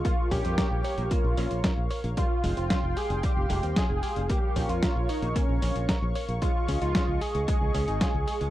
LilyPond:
<<
  \new Staff \with { instrumentName = "Analog synth pad" } { \time 4/4 \key bes \dorian \tempo 4 = 113 << { <f'' des'''>1 | <g'' c'''>1 | des'''1~ | des'''1 | } \\ { <bes' des''>1 | r1 | <bes' des''>1 | <aes' ees''>1 | } >> }
  \new Staff \with { instrumentName = "Analog synth lead" } { \time 4/4 \key bes \dorian f'8 g'4. f'4. r8 | f'8. f'8. aes'8 g'4 aes'4 | g'8. f'8. ees'8 des'4 r4 | f'8. f'8. aes'2~ aes'8 | }
  \new Staff \with { instrumentName = "Clean electric guitar" } { \time 4/4 \key bes \dorian bes16 r16 des'16 f'16 bes'16 r16 des''16 bes16 bes16 r16 des'16 f'16 bes'16 r16 des''16 bes16 | g16 r16 aes16 c'16 f'16 r16 g'16 g16 g16 r16 aes16 c'16 f'16 r16 g'16 g16 | bes16 r16 des'16 f'16 bes'16 r16 des''16 bes16 bes16 r16 des'16 f'16 bes'16 r16 des''16 bes16 | aes16 r16 des'16 ees'16 f'16 r16 aes'16 aes16 aes16 r16 des'16 ees'16 f'16 r16 aes'16 aes16 | }
  \new Staff \with { instrumentName = "Fingered electric bass" } { \clef bass \time 4/4 \key bes \dorian r8 bes,,16 f,16 r16 bes,,16 r16 bes,,16 r16 bes,,16 bes,,16 bes,,16 r16 bes,,16 r16 bes,,16 | r8 f,,16 f,,16 r16 f,,16 r16 f,,16 r16 f,,16 f,,16 ees,16 r16 f,,16 r16 f,,16 | r8 bes,,16 f,16 r16 bes,,16 r16 bes,,16 r16 bes,,16 bes,,16 bes,,16 r16 bes,,16 r16 bes,,16 | r8 des,16 des,16 r16 des,16 r16 des,16 r16 des,16 des,16 aes,,16 r16 des,16 r16 des,16 | }
  \new DrumStaff \with { instrumentName = "Drums" } \drummode { \time 4/4 <hh bd>8 <hho bd>16 hh16 <hh bd sn>8 hho16 hh16 <hh bd>8 hho16 hh16 <hh bd sn>8 hho16 hh16 | <hh bd>8 hho16 hh16 <hh bd sn>8 hho16 hh16 <hh bd>8 hho16 hh16 <hh bd sn>8 hho16 hh16 | <hh bd>8 <hho bd>16 hh16 <hh bd sn>8 hho16 hh16 <hh bd>8 hho16 hh16 <hh bd sn>8 hho16 hh16 | <hh bd>8 hho16 hh16 <hh bd sn>8 hho16 hh16 <hh bd>8 hho16 hh16 <hh bd sn>8 hho16 hh16 | }
>>